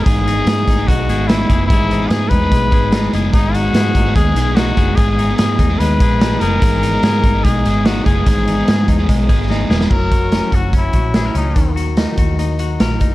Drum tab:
CC |----------------|----------------|----------------|----------------|
HH |x-x-x-x-x-x-x-x-|x-x-x-x-x-x-x-x-|x-x-x-x-x-x-x-x-|x-x-x-x-x-x-x-x-|
SD |----o-------o---|----o-------o---|----o-------o---|----o-------o---|
BD |o-----o-o-----o-|o-----o-o-o-----|o-----o-o-----o-|o-----o---o-----|

CC |----------------|----------------|x---------------|----------------|
HH |x-x-x-x-x-x-x-x-|x-x-x-x-x-x-----|--x-x-x-x-x-x-x-|x-x-x-x-x-x-x-x-|
SD |----o-------o---|----o-------o-oo|----o-------o---|----o-------o---|
BD |o-----o-o-----o-|o-----o-o-o-----|o-o---o-o-o-----|o-----o-------o-|